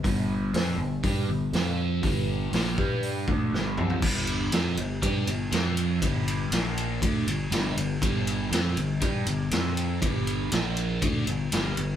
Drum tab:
CC |----------------|----------------|x---------------|----------------|
RD |----------------|----------------|--x-x-x-x-x-x-x-|x-x-x-x-x-x-x-x-|
HH |o---o---o---o---|o---o---o-------|----------------|----------------|
SD |----o-------o---|----o-------o---|----o-------o---|----o-------o---|
T2 |----------------|--------------o-|----------------|----------------|
FT |----------------|---------------o|----------------|----------------|
BD |o-------o-------|o-----o---o-----|o-------o-------|o-------o-------|

CC |----------------|----------------|
RD |x-x-x-x-x-x-x-x-|x-x-x-x-x-x-x-x-|
HH |----------------|----------------|
SD |----o-------o---|----o-------o---|
T2 |----------------|----------------|
FT |----------------|----------------|
BD |o-------o-------|o-------o-------|